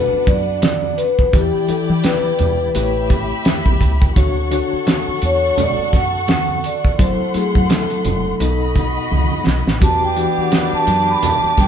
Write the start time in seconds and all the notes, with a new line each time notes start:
Already playing: B3 D4 F#4 A4 B4 D5 F#5
0.13 muted fingered electric bass stroke
0.27 F#2 D5, kick, closed hi-hat, muted conga
0.62 D5, snare, closed hi-hat, high conga
0.83 high conga
0.98 B4, closed hi-hat
1.19 kick
1.33 E2 E3 E4 G4 D5 G5, kick, closed hi-hat, muted conga
1.68 E3 E4 G4 A4 D5, muted fingered electric bass stroke, closed hi-hat
1.90 E3
2.04 B4, snare, closed hi-hat, high conga
2.39 E2, closed hi-hat, low conga
2.75 A1 A3 E4 G4 B4 E5 B5, closed hi-hat, muted conga
2.83 C#5
3.10 kick, closed hi-hat, muted conga
3.45 snare, closed hi-hat, high conga
3.66 B1, kick, high conga
3.81 C#2, kick, closed hi-hat
4.02 kick
4.15 D2 D3 D4 F#4 A4 C#5 F#5 C#6, kick, closed hi-hat, muted conga
4.51 D3 D4 F#4 C#5, closed hi-hat, muted conga
4.73 muted fingered electric bass stroke
4.87 snare, closed hi-hat, high conga
5.08 muted fingered electric bass stroke
5.22 E2 C#5, closed hi-hat
5.58 D5, closed hi-hat, muted conga, low conga
5.79 muted fingered electric bass stroke
5.93 F#2 F#5, kick, snare, closed hi-hat, muted conga
6.28 F#5, snare, closed hi-hat, high conga
6.48 high conga
6.64 D5, closed hi-hat
6.85 kick
6.98 F#1 F#3 A3 C4 E4 A4 C5 F#5 C6, kick, closed hi-hat, muted conga
7.34 F#3 A3 C4 E4 G#4, muted fingered electric bass stroke, closed hi-hat
7.55 F#2, kick
7.70 A4, snare, closed hi-hat, high conga
7.90 closed hi-hat
8.05 F#1, closed hi-hat, low conga
8.40 B1 B2 B3 D#4 F#4 A4 D#5 B5, closed hi-hat, muted conga
8.76 kick, closed hi-hat, muted conga
9.11 C#2, high conga
9.31 high conga
9.46 B1, snare
9.67 A1, snare
9.80 E2 E3 B3 D4 F#4 G4 B4 A5 D6, kick, closed hi-hat, muted conga
10.04 G5
10.16 E3 D4 F#4 G4, closed hi-hat
10.38 F#5, muted fingered electric bass stroke
10.51 snare, closed hi-hat, tambourine, high conga
10.73 A5, muted fingered electric bass stroke
10.87 F#2, closed hi-hat
11.10 B5
11.23 A5, closed hi-hat, muted conga, low conga
11.43 muted fingered electric bass stroke
11.58 G2 G5, kick, snare, closed hi-hat, muted conga